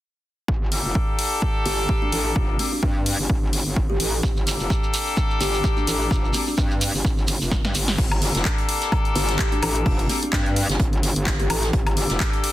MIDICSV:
0, 0, Header, 1, 6, 480
1, 0, Start_track
1, 0, Key_signature, -2, "minor"
1, 0, Tempo, 468750
1, 496, Time_signature, 4, 2, 24, 8
1, 12824, End_track
2, 0, Start_track
2, 0, Title_t, "Horn section"
2, 0, Program_c, 0, 61
2, 735, Note_on_c, 0, 58, 95
2, 735, Note_on_c, 0, 62, 88
2, 735, Note_on_c, 0, 67, 85
2, 735, Note_on_c, 0, 69, 107
2, 2630, Note_off_c, 0, 58, 0
2, 2630, Note_off_c, 0, 62, 0
2, 2630, Note_off_c, 0, 67, 0
2, 2630, Note_off_c, 0, 69, 0
2, 2654, Note_on_c, 0, 58, 67
2, 2654, Note_on_c, 0, 62, 63
2, 2654, Note_on_c, 0, 67, 65
2, 2654, Note_on_c, 0, 69, 78
2, 2749, Note_off_c, 0, 58, 0
2, 2749, Note_off_c, 0, 62, 0
2, 2749, Note_off_c, 0, 67, 0
2, 2749, Note_off_c, 0, 69, 0
2, 4575, Note_on_c, 0, 58, 94
2, 4576, Note_on_c, 0, 62, 87
2, 4576, Note_on_c, 0, 67, 90
2, 4576, Note_on_c, 0, 69, 111
2, 6470, Note_off_c, 0, 58, 0
2, 6470, Note_off_c, 0, 62, 0
2, 6470, Note_off_c, 0, 67, 0
2, 6470, Note_off_c, 0, 69, 0
2, 6496, Note_on_c, 0, 58, 75
2, 6496, Note_on_c, 0, 62, 70
2, 6496, Note_on_c, 0, 67, 67
2, 6497, Note_on_c, 0, 69, 80
2, 6590, Note_off_c, 0, 58, 0
2, 6590, Note_off_c, 0, 62, 0
2, 6590, Note_off_c, 0, 67, 0
2, 6590, Note_off_c, 0, 69, 0
2, 8416, Note_on_c, 0, 58, 98
2, 8416, Note_on_c, 0, 62, 94
2, 8416, Note_on_c, 0, 67, 91
2, 8416, Note_on_c, 0, 69, 116
2, 10310, Note_off_c, 0, 58, 0
2, 10310, Note_off_c, 0, 62, 0
2, 10310, Note_off_c, 0, 67, 0
2, 10310, Note_off_c, 0, 69, 0
2, 10335, Note_on_c, 0, 58, 76
2, 10335, Note_on_c, 0, 62, 67
2, 10335, Note_on_c, 0, 67, 69
2, 10335, Note_on_c, 0, 69, 84
2, 10430, Note_off_c, 0, 58, 0
2, 10430, Note_off_c, 0, 62, 0
2, 10430, Note_off_c, 0, 67, 0
2, 10430, Note_off_c, 0, 69, 0
2, 12254, Note_on_c, 0, 67, 92
2, 12254, Note_on_c, 0, 69, 116
2, 12255, Note_on_c, 0, 58, 100
2, 12255, Note_on_c, 0, 62, 92
2, 12824, Note_off_c, 0, 58, 0
2, 12824, Note_off_c, 0, 62, 0
2, 12824, Note_off_c, 0, 67, 0
2, 12824, Note_off_c, 0, 69, 0
2, 12824, End_track
3, 0, Start_track
3, 0, Title_t, "Kalimba"
3, 0, Program_c, 1, 108
3, 1695, Note_on_c, 1, 67, 82
3, 2042, Note_off_c, 1, 67, 0
3, 2069, Note_on_c, 1, 62, 86
3, 2265, Note_off_c, 1, 62, 0
3, 2655, Note_on_c, 1, 60, 82
3, 2762, Note_off_c, 1, 60, 0
3, 2787, Note_on_c, 1, 62, 85
3, 2856, Note_off_c, 1, 62, 0
3, 2895, Note_on_c, 1, 62, 72
3, 2981, Note_off_c, 1, 62, 0
3, 3989, Note_on_c, 1, 67, 85
3, 4336, Note_off_c, 1, 67, 0
3, 5535, Note_on_c, 1, 67, 84
3, 5882, Note_off_c, 1, 67, 0
3, 5908, Note_on_c, 1, 62, 83
3, 6104, Note_off_c, 1, 62, 0
3, 6494, Note_on_c, 1, 60, 85
3, 6602, Note_off_c, 1, 60, 0
3, 6627, Note_on_c, 1, 62, 89
3, 6974, Note_off_c, 1, 62, 0
3, 9375, Note_on_c, 1, 67, 88
3, 9722, Note_off_c, 1, 67, 0
3, 9750, Note_on_c, 1, 62, 88
3, 9945, Note_off_c, 1, 62, 0
3, 10334, Note_on_c, 1, 60, 86
3, 10442, Note_off_c, 1, 60, 0
3, 10468, Note_on_c, 1, 62, 89
3, 10537, Note_off_c, 1, 62, 0
3, 10575, Note_on_c, 1, 62, 75
3, 10661, Note_off_c, 1, 62, 0
3, 11669, Note_on_c, 1, 67, 87
3, 12015, Note_off_c, 1, 67, 0
3, 12824, End_track
4, 0, Start_track
4, 0, Title_t, "Wobble bass"
4, 0, Program_c, 2, 39
4, 495, Note_on_c, 2, 31, 97
4, 847, Note_off_c, 2, 31, 0
4, 869, Note_on_c, 2, 29, 91
4, 958, Note_off_c, 2, 29, 0
4, 1694, Note_on_c, 2, 31, 95
4, 1918, Note_off_c, 2, 31, 0
4, 2174, Note_on_c, 2, 33, 90
4, 2398, Note_off_c, 2, 33, 0
4, 2414, Note_on_c, 2, 29, 94
4, 2638, Note_off_c, 2, 29, 0
4, 2895, Note_on_c, 2, 43, 95
4, 3247, Note_off_c, 2, 43, 0
4, 3269, Note_on_c, 2, 31, 86
4, 3358, Note_off_c, 2, 31, 0
4, 3374, Note_on_c, 2, 31, 94
4, 3727, Note_off_c, 2, 31, 0
4, 3749, Note_on_c, 2, 31, 88
4, 4078, Note_off_c, 2, 31, 0
4, 4095, Note_on_c, 2, 33, 88
4, 4318, Note_off_c, 2, 33, 0
4, 4335, Note_on_c, 2, 31, 90
4, 4687, Note_off_c, 2, 31, 0
4, 4708, Note_on_c, 2, 29, 92
4, 4798, Note_off_c, 2, 29, 0
4, 5535, Note_on_c, 2, 31, 93
4, 5758, Note_off_c, 2, 31, 0
4, 6015, Note_on_c, 2, 33, 92
4, 6238, Note_off_c, 2, 33, 0
4, 6255, Note_on_c, 2, 29, 94
4, 6478, Note_off_c, 2, 29, 0
4, 6735, Note_on_c, 2, 43, 95
4, 7088, Note_off_c, 2, 43, 0
4, 7110, Note_on_c, 2, 31, 95
4, 7199, Note_off_c, 2, 31, 0
4, 7215, Note_on_c, 2, 31, 96
4, 7568, Note_off_c, 2, 31, 0
4, 7591, Note_on_c, 2, 29, 92
4, 7809, Note_off_c, 2, 29, 0
4, 7830, Note_on_c, 2, 43, 94
4, 7919, Note_off_c, 2, 43, 0
4, 7935, Note_on_c, 2, 31, 96
4, 8158, Note_off_c, 2, 31, 0
4, 8175, Note_on_c, 2, 31, 98
4, 8528, Note_off_c, 2, 31, 0
4, 8550, Note_on_c, 2, 29, 96
4, 8639, Note_off_c, 2, 29, 0
4, 9375, Note_on_c, 2, 31, 100
4, 9598, Note_off_c, 2, 31, 0
4, 9856, Note_on_c, 2, 33, 96
4, 10079, Note_off_c, 2, 33, 0
4, 10095, Note_on_c, 2, 29, 94
4, 10318, Note_off_c, 2, 29, 0
4, 10574, Note_on_c, 2, 43, 96
4, 10927, Note_off_c, 2, 43, 0
4, 10948, Note_on_c, 2, 31, 94
4, 11038, Note_off_c, 2, 31, 0
4, 11055, Note_on_c, 2, 31, 95
4, 11407, Note_off_c, 2, 31, 0
4, 11429, Note_on_c, 2, 31, 98
4, 11758, Note_off_c, 2, 31, 0
4, 11774, Note_on_c, 2, 33, 93
4, 11998, Note_off_c, 2, 33, 0
4, 12015, Note_on_c, 2, 31, 97
4, 12368, Note_off_c, 2, 31, 0
4, 12389, Note_on_c, 2, 29, 98
4, 12478, Note_off_c, 2, 29, 0
4, 12824, End_track
5, 0, Start_track
5, 0, Title_t, "Shekere"
5, 4337, Note_on_c, 9, 82, 49
5, 4439, Note_off_c, 9, 82, 0
5, 4471, Note_on_c, 9, 82, 25
5, 4573, Note_off_c, 9, 82, 0
5, 4584, Note_on_c, 9, 82, 92
5, 4686, Note_off_c, 9, 82, 0
5, 4709, Note_on_c, 9, 82, 41
5, 4811, Note_off_c, 9, 82, 0
5, 4817, Note_on_c, 9, 82, 56
5, 4920, Note_off_c, 9, 82, 0
5, 4951, Note_on_c, 9, 82, 28
5, 5053, Note_off_c, 9, 82, 0
5, 5058, Note_on_c, 9, 82, 89
5, 5161, Note_off_c, 9, 82, 0
5, 5185, Note_on_c, 9, 82, 40
5, 5288, Note_off_c, 9, 82, 0
5, 5296, Note_on_c, 9, 82, 57
5, 5399, Note_off_c, 9, 82, 0
5, 5432, Note_on_c, 9, 82, 24
5, 5535, Note_off_c, 9, 82, 0
5, 5536, Note_on_c, 9, 82, 79
5, 5639, Note_off_c, 9, 82, 0
5, 5670, Note_on_c, 9, 82, 39
5, 5772, Note_off_c, 9, 82, 0
5, 5778, Note_on_c, 9, 82, 54
5, 5881, Note_off_c, 9, 82, 0
5, 5906, Note_on_c, 9, 82, 27
5, 6009, Note_off_c, 9, 82, 0
5, 6019, Note_on_c, 9, 82, 87
5, 6122, Note_off_c, 9, 82, 0
5, 6153, Note_on_c, 9, 82, 35
5, 6255, Note_off_c, 9, 82, 0
5, 6266, Note_on_c, 9, 82, 52
5, 6368, Note_off_c, 9, 82, 0
5, 6395, Note_on_c, 9, 82, 27
5, 6485, Note_off_c, 9, 82, 0
5, 6485, Note_on_c, 9, 82, 86
5, 6587, Note_off_c, 9, 82, 0
5, 6624, Note_on_c, 9, 82, 40
5, 6727, Note_off_c, 9, 82, 0
5, 6733, Note_on_c, 9, 82, 53
5, 6835, Note_off_c, 9, 82, 0
5, 6872, Note_on_c, 9, 82, 26
5, 6974, Note_off_c, 9, 82, 0
5, 6977, Note_on_c, 9, 82, 89
5, 7079, Note_off_c, 9, 82, 0
5, 7109, Note_on_c, 9, 82, 36
5, 7212, Note_off_c, 9, 82, 0
5, 7224, Note_on_c, 9, 82, 55
5, 7326, Note_off_c, 9, 82, 0
5, 7350, Note_on_c, 9, 82, 24
5, 7450, Note_off_c, 9, 82, 0
5, 7450, Note_on_c, 9, 82, 95
5, 7552, Note_off_c, 9, 82, 0
5, 7592, Note_on_c, 9, 82, 42
5, 7694, Note_off_c, 9, 82, 0
5, 7700, Note_on_c, 9, 82, 51
5, 7803, Note_off_c, 9, 82, 0
5, 7828, Note_on_c, 9, 82, 24
5, 7930, Note_off_c, 9, 82, 0
5, 7930, Note_on_c, 9, 82, 80
5, 8032, Note_off_c, 9, 82, 0
5, 8069, Note_on_c, 9, 82, 41
5, 8171, Note_off_c, 9, 82, 0
5, 12824, End_track
6, 0, Start_track
6, 0, Title_t, "Drums"
6, 495, Note_on_c, 9, 36, 108
6, 598, Note_off_c, 9, 36, 0
6, 735, Note_on_c, 9, 46, 94
6, 837, Note_off_c, 9, 46, 0
6, 975, Note_on_c, 9, 36, 101
6, 1078, Note_off_c, 9, 36, 0
6, 1215, Note_on_c, 9, 46, 100
6, 1317, Note_off_c, 9, 46, 0
6, 1455, Note_on_c, 9, 36, 112
6, 1558, Note_off_c, 9, 36, 0
6, 1696, Note_on_c, 9, 46, 100
6, 1798, Note_off_c, 9, 46, 0
6, 1935, Note_on_c, 9, 36, 95
6, 2037, Note_off_c, 9, 36, 0
6, 2175, Note_on_c, 9, 46, 99
6, 2278, Note_off_c, 9, 46, 0
6, 2415, Note_on_c, 9, 36, 119
6, 2517, Note_off_c, 9, 36, 0
6, 2655, Note_on_c, 9, 46, 99
6, 2757, Note_off_c, 9, 46, 0
6, 2895, Note_on_c, 9, 36, 102
6, 2997, Note_off_c, 9, 36, 0
6, 3134, Note_on_c, 9, 46, 105
6, 3237, Note_off_c, 9, 46, 0
6, 3375, Note_on_c, 9, 36, 112
6, 3477, Note_off_c, 9, 36, 0
6, 3615, Note_on_c, 9, 46, 103
6, 3717, Note_off_c, 9, 46, 0
6, 3855, Note_on_c, 9, 36, 103
6, 3957, Note_off_c, 9, 36, 0
6, 4095, Note_on_c, 9, 46, 103
6, 4198, Note_off_c, 9, 46, 0
6, 4335, Note_on_c, 9, 36, 119
6, 4437, Note_off_c, 9, 36, 0
6, 4576, Note_on_c, 9, 46, 102
6, 4678, Note_off_c, 9, 46, 0
6, 4815, Note_on_c, 9, 36, 104
6, 4917, Note_off_c, 9, 36, 0
6, 5055, Note_on_c, 9, 46, 109
6, 5157, Note_off_c, 9, 46, 0
6, 5295, Note_on_c, 9, 36, 116
6, 5398, Note_off_c, 9, 36, 0
6, 5536, Note_on_c, 9, 46, 104
6, 5638, Note_off_c, 9, 46, 0
6, 5775, Note_on_c, 9, 36, 100
6, 5878, Note_off_c, 9, 36, 0
6, 6015, Note_on_c, 9, 46, 106
6, 6117, Note_off_c, 9, 46, 0
6, 6255, Note_on_c, 9, 36, 120
6, 6358, Note_off_c, 9, 36, 0
6, 6496, Note_on_c, 9, 46, 97
6, 6598, Note_off_c, 9, 46, 0
6, 6735, Note_on_c, 9, 36, 106
6, 6838, Note_off_c, 9, 36, 0
6, 6975, Note_on_c, 9, 46, 109
6, 7078, Note_off_c, 9, 46, 0
6, 7215, Note_on_c, 9, 36, 119
6, 7318, Note_off_c, 9, 36, 0
6, 7455, Note_on_c, 9, 46, 105
6, 7558, Note_off_c, 9, 46, 0
6, 7695, Note_on_c, 9, 36, 102
6, 7696, Note_on_c, 9, 38, 60
6, 7798, Note_off_c, 9, 36, 0
6, 7798, Note_off_c, 9, 38, 0
6, 7830, Note_on_c, 9, 38, 59
6, 7932, Note_off_c, 9, 38, 0
6, 7935, Note_on_c, 9, 46, 101
6, 8037, Note_off_c, 9, 46, 0
6, 8069, Note_on_c, 9, 38, 77
6, 8171, Note_off_c, 9, 38, 0
6, 8173, Note_on_c, 9, 42, 88
6, 8175, Note_on_c, 9, 36, 116
6, 8175, Note_on_c, 9, 49, 91
6, 8275, Note_off_c, 9, 42, 0
6, 8277, Note_off_c, 9, 36, 0
6, 8278, Note_off_c, 9, 49, 0
6, 8309, Note_on_c, 9, 42, 54
6, 8309, Note_on_c, 9, 76, 61
6, 8412, Note_off_c, 9, 42, 0
6, 8412, Note_off_c, 9, 76, 0
6, 8415, Note_on_c, 9, 46, 104
6, 8417, Note_on_c, 9, 42, 70
6, 8518, Note_off_c, 9, 46, 0
6, 8519, Note_off_c, 9, 42, 0
6, 8549, Note_on_c, 9, 42, 69
6, 8556, Note_on_c, 9, 38, 37
6, 8649, Note_off_c, 9, 38, 0
6, 8649, Note_on_c, 9, 38, 110
6, 8651, Note_off_c, 9, 42, 0
6, 8651, Note_on_c, 9, 42, 83
6, 8655, Note_on_c, 9, 36, 101
6, 8655, Note_on_c, 9, 39, 115
6, 8751, Note_off_c, 9, 38, 0
6, 8753, Note_off_c, 9, 42, 0
6, 8757, Note_off_c, 9, 36, 0
6, 8757, Note_off_c, 9, 39, 0
6, 8789, Note_on_c, 9, 42, 38
6, 8892, Note_off_c, 9, 42, 0
6, 8894, Note_on_c, 9, 42, 64
6, 8895, Note_on_c, 9, 46, 104
6, 8997, Note_off_c, 9, 42, 0
6, 8997, Note_off_c, 9, 46, 0
6, 9027, Note_on_c, 9, 38, 38
6, 9029, Note_on_c, 9, 42, 67
6, 9129, Note_off_c, 9, 38, 0
6, 9131, Note_off_c, 9, 42, 0
6, 9135, Note_on_c, 9, 36, 119
6, 9136, Note_on_c, 9, 42, 77
6, 9136, Note_on_c, 9, 76, 60
6, 9237, Note_off_c, 9, 36, 0
6, 9238, Note_off_c, 9, 42, 0
6, 9238, Note_off_c, 9, 76, 0
6, 9269, Note_on_c, 9, 42, 38
6, 9371, Note_off_c, 9, 42, 0
6, 9372, Note_on_c, 9, 42, 65
6, 9375, Note_on_c, 9, 46, 102
6, 9474, Note_off_c, 9, 42, 0
6, 9477, Note_off_c, 9, 46, 0
6, 9509, Note_on_c, 9, 42, 70
6, 9516, Note_on_c, 9, 38, 41
6, 9607, Note_off_c, 9, 38, 0
6, 9607, Note_on_c, 9, 38, 116
6, 9612, Note_off_c, 9, 42, 0
6, 9614, Note_on_c, 9, 42, 83
6, 9615, Note_on_c, 9, 36, 102
6, 9616, Note_on_c, 9, 39, 120
6, 9709, Note_off_c, 9, 38, 0
6, 9716, Note_off_c, 9, 42, 0
6, 9717, Note_off_c, 9, 36, 0
6, 9718, Note_off_c, 9, 39, 0
6, 9749, Note_on_c, 9, 42, 38
6, 9750, Note_off_c, 9, 42, 0
6, 9750, Note_on_c, 9, 42, 54
6, 9853, Note_off_c, 9, 42, 0
6, 9857, Note_on_c, 9, 46, 104
6, 9857, Note_on_c, 9, 76, 62
6, 9859, Note_on_c, 9, 42, 71
6, 9959, Note_off_c, 9, 46, 0
6, 9959, Note_off_c, 9, 76, 0
6, 9961, Note_off_c, 9, 42, 0
6, 9991, Note_on_c, 9, 42, 68
6, 10093, Note_off_c, 9, 42, 0
6, 10095, Note_on_c, 9, 36, 124
6, 10097, Note_on_c, 9, 46, 76
6, 10197, Note_off_c, 9, 36, 0
6, 10199, Note_off_c, 9, 46, 0
6, 10231, Note_on_c, 9, 42, 53
6, 10333, Note_off_c, 9, 42, 0
6, 10336, Note_on_c, 9, 42, 71
6, 10337, Note_on_c, 9, 46, 104
6, 10438, Note_off_c, 9, 42, 0
6, 10440, Note_off_c, 9, 46, 0
6, 10472, Note_on_c, 9, 42, 63
6, 10574, Note_off_c, 9, 42, 0
6, 10575, Note_on_c, 9, 36, 109
6, 10578, Note_on_c, 9, 39, 117
6, 10580, Note_on_c, 9, 42, 76
6, 10583, Note_on_c, 9, 38, 115
6, 10677, Note_off_c, 9, 36, 0
6, 10680, Note_off_c, 9, 39, 0
6, 10682, Note_off_c, 9, 42, 0
6, 10686, Note_off_c, 9, 38, 0
6, 10712, Note_on_c, 9, 42, 38
6, 10815, Note_off_c, 9, 42, 0
6, 10818, Note_on_c, 9, 46, 107
6, 10819, Note_on_c, 9, 42, 62
6, 10920, Note_off_c, 9, 46, 0
6, 10921, Note_off_c, 9, 42, 0
6, 10952, Note_on_c, 9, 38, 45
6, 10952, Note_on_c, 9, 42, 65
6, 11054, Note_off_c, 9, 38, 0
6, 11054, Note_off_c, 9, 42, 0
6, 11054, Note_on_c, 9, 42, 94
6, 11055, Note_on_c, 9, 36, 117
6, 11157, Note_off_c, 9, 36, 0
6, 11157, Note_off_c, 9, 42, 0
6, 11191, Note_on_c, 9, 42, 35
6, 11294, Note_off_c, 9, 42, 0
6, 11297, Note_on_c, 9, 46, 110
6, 11299, Note_on_c, 9, 42, 71
6, 11399, Note_off_c, 9, 46, 0
6, 11402, Note_off_c, 9, 42, 0
6, 11430, Note_on_c, 9, 42, 64
6, 11532, Note_off_c, 9, 42, 0
6, 11535, Note_on_c, 9, 36, 102
6, 11536, Note_on_c, 9, 39, 126
6, 11538, Note_on_c, 9, 38, 111
6, 11538, Note_on_c, 9, 42, 85
6, 11637, Note_off_c, 9, 36, 0
6, 11638, Note_off_c, 9, 39, 0
6, 11640, Note_off_c, 9, 38, 0
6, 11641, Note_off_c, 9, 42, 0
6, 11663, Note_on_c, 9, 42, 41
6, 11669, Note_off_c, 9, 42, 0
6, 11669, Note_on_c, 9, 42, 50
6, 11771, Note_off_c, 9, 42, 0
6, 11771, Note_on_c, 9, 42, 64
6, 11776, Note_on_c, 9, 46, 106
6, 11776, Note_on_c, 9, 76, 61
6, 11873, Note_off_c, 9, 42, 0
6, 11879, Note_off_c, 9, 46, 0
6, 11879, Note_off_c, 9, 76, 0
6, 11909, Note_on_c, 9, 42, 65
6, 11911, Note_on_c, 9, 38, 39
6, 12011, Note_off_c, 9, 42, 0
6, 12011, Note_on_c, 9, 42, 78
6, 12013, Note_off_c, 9, 38, 0
6, 12015, Note_on_c, 9, 36, 126
6, 12113, Note_off_c, 9, 42, 0
6, 12117, Note_off_c, 9, 36, 0
6, 12150, Note_on_c, 9, 42, 50
6, 12150, Note_on_c, 9, 76, 60
6, 12250, Note_off_c, 9, 42, 0
6, 12250, Note_on_c, 9, 42, 68
6, 12252, Note_off_c, 9, 76, 0
6, 12256, Note_on_c, 9, 46, 106
6, 12353, Note_off_c, 9, 42, 0
6, 12358, Note_off_c, 9, 46, 0
6, 12384, Note_on_c, 9, 38, 39
6, 12389, Note_on_c, 9, 42, 63
6, 12486, Note_off_c, 9, 38, 0
6, 12492, Note_off_c, 9, 42, 0
6, 12492, Note_on_c, 9, 38, 113
6, 12494, Note_on_c, 9, 42, 84
6, 12495, Note_on_c, 9, 36, 108
6, 12496, Note_on_c, 9, 39, 115
6, 12595, Note_off_c, 9, 38, 0
6, 12597, Note_off_c, 9, 36, 0
6, 12597, Note_off_c, 9, 42, 0
6, 12598, Note_off_c, 9, 39, 0
6, 12625, Note_on_c, 9, 42, 42
6, 12630, Note_off_c, 9, 42, 0
6, 12630, Note_on_c, 9, 42, 35
6, 12732, Note_off_c, 9, 42, 0
6, 12734, Note_on_c, 9, 42, 62
6, 12735, Note_on_c, 9, 46, 109
6, 12824, Note_off_c, 9, 42, 0
6, 12824, Note_off_c, 9, 46, 0
6, 12824, End_track
0, 0, End_of_file